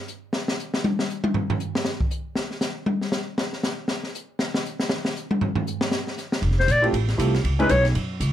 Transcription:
0.08 hi-hat pedal
0.33 snare
0.48 snare
0.59 hi-hat pedal
0.74 snare
0.84 high tom
0.99 snare
1.10 hi-hat pedal
1.24 high tom
1.34 floor tom
1.50 floor tom
1.60 hi-hat pedal
1.75 snare
1.85 snare
2.00 kick
2.10 hi-hat pedal
2.35 snare
2.51 snare
2.61 snare, hi-hat pedal
2.86 high tom
3.01 snare
3.12 snare, hi-hat pedal
3.38 snare
3.53 snare
3.63 snare, hi-hat pedal
3.88 snare
4.03 snare
4.15 hi-hat pedal
4.39 snare
4.54 snare
4.65 hi-hat pedal
4.79 snare
4.89 snare
5.05 snare
5.16 hi-hat pedal
5.31 high tom
5.41 floor tom
5.55 floor tom
5.67 hi-hat pedal
5.81 snare
5.91 snare
6.07 snare
6.18 snare, hi-hat pedal
6.32 snare
6.42 F1, kick, ride
6.51 snare
6.60 C5, snare
6.68 A#1 D5, kick, hi-hat pedal, ride
6.82 A3 C4 E4 F4 G4, ride
6.93 A1, kick, ride
7.08 snare, ride
7.17 C2 A3 C4 E4 F4 G4, kick, hi-hat pedal, ride
7.34 snare, ride
7.44 C#2, kick, ride
7.59 G#3 C#4 D#4 E4 B4, ride
7.69 B1 C#5, kick, hi-hat pedal, ride
7.85 snare, ride
7.95 F#2, kick, ride
8.20 C#2, kick, hi-hat pedal, ride

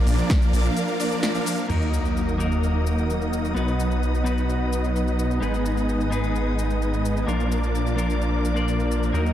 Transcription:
Already playing: F3 A#3 D4 A#4 D5 F5 D6
0.07 A#1, open hi-hat, ride, cabasa
0.18 F3 A#3 D4 A#4 D5, closed hi-hat, cabasa
0.30 kick, snare, closed hi-hat, ride, cabasa
0.42 closed hi-hat, cabasa
0.53 A#1, open hi-hat, ride, cabasa
0.65 F3 A#3 D4 A#4 F5, closed hi-hat, cabasa
0.77 closed hi-hat, ride, cabasa
0.88 closed hi-hat
1.00 F3 A#3 D4 A#4 D5, open hi-hat, ride, cabasa
1.11 closed hi-hat, cabasa
1.23 snare, closed hi-hat, ride, cabasa
1.35 F3 A#3 D4 A#4 F5, closed hi-hat, cabasa
1.46 open hi-hat, ride, cabasa
1.58 closed hi-hat, cabasa
1.68 D#2 F#3 A#3 D#4 F#4 A#4 D#5 F#5 D#6, crash, sub drop, cabasa
1.82 cabasa
1.94 cabasa
2.05 cabasa
2.17 cabasa
2.29 cabasa
2.38 A#3 D#4 F#4 A#4, cabasa
2.52 cabasa
2.63 cabasa
2.87 cabasa
2.98 cabasa
3.10 cabasa
3.22 cabasa
3.33 cabasa
3.45 cabasa
3.54 B1 F#3 B3 D#4 F#4 B4 D#5, cabasa
3.68 cabasa
3.80 cabasa
3.91 cabasa
4.03 cabasa
4.15 cabasa
4.24 B3 D#4 F#4 B4, cabasa
4.38 cabasa
4.49 cabasa
4.73 cabasa
4.84 cabasa
4.96 cabasa
5.08 cabasa
5.19 cabasa
5.31 cabasa
5.41 G#1 G#3 B3 D#4 G#4 B4 D#5 G#5 D#6, cabasa
5.54 cabasa
5.66 cabasa
5.77 cabasa
5.89 cabasa
6.01 cabasa
6.10 B3 D#4 G#4 B4, cabasa
6.24 cabasa
6.35 cabasa
6.59 cabasa
6.70 cabasa
6.82 cabasa
6.94 cabasa
7.05 cabasa
7.17 cabasa
7.27 A#1 F3 A#3 D4 F4 A#4 D5 F5 D6, cabasa
7.40 cabasa
7.52 cabasa
7.63 cabasa
7.75 cabasa
7.87 cabasa
7.96 A#3 D4 F4 A#4, cabasa
8.10 cabasa
8.22 cabasa
8.45 cabasa
8.54 A#3 D4 F4 D5, cabasa
8.68 cabasa
8.80 cabasa
8.91 cabasa
9.03 cabasa
9.13 D#2 F#3 A#3 D#4 F#4 A#4 D#5 F#5 D#6, cabasa
9.26 cabasa

